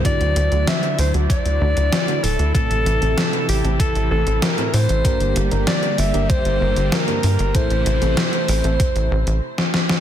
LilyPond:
<<
  \new Staff \with { instrumentName = "Alto saxophone" } { \time 4/4 \key d \minor \tempo 4 = 96 d''4 e''8 c''8 d''4. a'8 | a'4. g'8 a'8 a'8 bes'8 c''8~ | c''8 r8 d''8 e''8 c''4 bes'4 | c''2. r4 | }
  \new Staff \with { instrumentName = "FM electric piano" } { \time 4/4 \key d \minor <d a d' e' fis'>8. <d a d' e' fis'>16 r8. <d a d' e' fis'>16 r8 <d a d' e' fis'>16 r8 <d a d' e' fis'>16 r8 | <a, a c' e' a'>8. <a, a c' e' a'>16 r8. <a, a c' e' a'>16 r8 <a, a c' e' a'>16 r8 <a, a c' e' a'>16 r8 | <g, bes d' g' bes'>8. <g, bes d' g' bes'>16 r8. <g, bes d' g' bes'>16 r8 <g, bes d' g' bes'>16 r8 <g, bes d' g' bes'>16 r8 | <a, a c' e' a'>8. <a, a c' e' a'>16 r8. <a, a c' e' a'>16 r2 | }
  \new Staff \with { instrumentName = "Supersaw synth" } { \clef bass \time 4/4 \key d \minor << { e'1~ | e'1 | <bes g'>1 | <a e'>2. r4 | } \\ { <d fis>1 | <c e>1 | <d g>1 | <c e>2. r4 | } >> }
  \new Staff \with { instrumentName = "Analog synth bass" } { \clef bass \time 4/4 \key d \minor r16 d,16 d,16 d,16 r8 d,16 d,16 r16 d,16 d,16 d,16 r8 d,,16 d,16 | r16 a,,16 a,,16 a,,16 r8 a,,16 a,,16 r16 a,,16 a,,16 a,,16 r8 a,16 a,,16 | r16 g,,16 g,,16 g,,16 r8 g,,16 g,,16 r16 g,,16 g,,16 g,,16 r8 g,16 g,,16 | r16 a,,16 a,,16 a,,16 r8 a,,16 a,,16 r16 a,,16 a,,16 a,,16 r4 | }
  \new DrumStaff \with { instrumentName = "Drums" } \drummode { \time 4/4 <hh bd>16 hh16 hh16 hh16 <hh sn>16 hh16 hho16 hh16 <hh bd>16 hh8 hh16 <hh sn>16 hh16 hho16 hh16 | <hh bd>16 hh16 hh16 hh16 <hh sn>16 hh16 hho16 hh16 <hh bd>16 hh8 hh16 <hh sn>16 hh16 hho16 hh16 | <hh bd>16 hh16 hh16 hh16 <hh sn>16 hh16 hho16 hh16 <hh bd>16 hh8 hh16 <hh sn>16 hh16 hho16 hh16 | <hh bd>16 hh16 hh16 hh16 <hh sn>16 hh16 hho16 hh16 <hh bd>16 hh8 hh16 r16 sn16 sn16 sn16 | }
>>